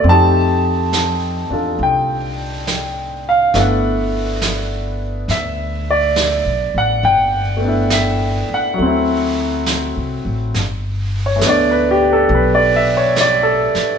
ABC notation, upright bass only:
X:1
M:4/4
L:1/8
Q:"Swing" 1/4=69
K:G
V:1 name="Upright bass" clef=bass
=F,,3 E,, C,,4 | G,,,4 D,,2- (3D,, B,,, A,,, | G,,,3 z D,,2- (3D,, C,, A,,, | G,,,2 D,,2 B,,,3 z |]